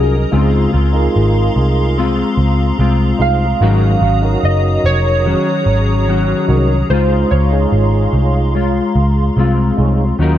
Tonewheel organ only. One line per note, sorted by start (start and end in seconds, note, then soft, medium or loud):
0.00 0.17 C#4 medium
0.00 0.17 F4 medium
0.00 0.18 F#4 medium
0.00 0.18 A#4 medium
0.31 0.71 D#4 medium
0.31 0.71 F4 medium
0.31 0.71 G#4 medium
0.31 0.72 C5 medium
0.93 1.98 D#4 medium
0.93 1.98 F4 medium
0.93 1.98 G#4 medium
0.93 1.99 A#4 medium
3.19 3.46 D#4 medium
3.19 3.46 F4 medium
3.19 3.47 G#4 medium
3.19 3.47 C5 medium
3.60 4.00 D#4 medium
3.60 4.00 F#4 medium
3.60 4.01 A#4 medium
3.60 4.01 C#5 medium
4.22 5.27 D#4 medium
4.22 5.27 F#4 medium
4.22 5.28 A#4 medium
4.22 5.28 C#5 medium
6.48 6.75 D#4 medium
6.48 6.75 F#4 medium
6.48 6.75 A#4 medium
6.48 6.76 C#5 loud
6.90 7.29 D#4 medium
6.90 7.30 F4 medium
6.90 7.30 G#4 medium
6.90 7.31 C5 medium
7.51 8.56 D#4 medium
7.51 8.56 F4 medium
7.51 8.57 G#4 medium
7.51 8.57 C#5 medium
9.77 10.04 D#4 medium
9.77 10.05 F4 medium
9.77 10.05 G#4 medium
9.77 10.06 C#5 medium
10.19 10.38 C#4 medium
10.19 10.38 F4 medium
10.19 10.38 F#4 medium
10.19 10.38 A#4 loud